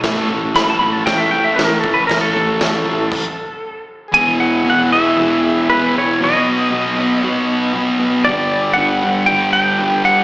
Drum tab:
CC |x-x-x-x-|x-x-x---|--------|--------|
SD |o-o-o-o-|o-o-----|--------|--------|
BD |o---o--o|o---o---|--------|--------|

CC |--------|
SD |--------|
BD |--------|